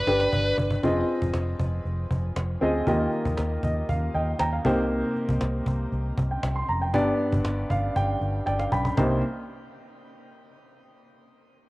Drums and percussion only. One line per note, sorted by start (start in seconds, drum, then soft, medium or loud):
0.07 cajon slap medium
0.20 cajon slap medium
0.33 cajon bass medium
0.58 cajon bass loud
0.70 cajon bass loud
0.83 cajon bass loud
1.09 cajon slap soft
1.22 cajon bass medium
1.34 cajon slap loud
1.60 cajon bass medium
1.86 cajon slap medium
2.11 cajon bass loud
2.36 cajon slap loud
2.61 cajon slap soft
2.87 cajon bass loud
3.12 cajon slap soft
3.25 cajon bass medium
3.37 cajon slap loud
3.63 cajon bass medium
3.89 cajon bass medium
3.89 cajon slap medium
4.14 cajon slap soft
4.39 cajon slap loud
4.65 cajon bass loud
4.90 cajon slap soft
5.16 cajon slap soft
5.29 cajon bass medium
5.41 cajon slap loud
5.66 cajon bass loud
5.92 cajon slap medium
6.18 cajon bass loud
6.43 cajon slap loud
6.68 cajon slap soft
6.94 cajon bass loud
7.20 cajon slap soft
7.32 cajon bass loud
7.45 cajon slap loud
7.58 cajon slap soft
7.70 cajon bass loud
7.96 cajon bass medium
7.96 cajon slap soft
8.22 cajon slap soft
8.47 cajon slap medium
8.60 cajon slap medium
8.72 cajon bass medium
8.85 cajon bass medium
8.97 cajon bass loud
8.97 cajon slap loud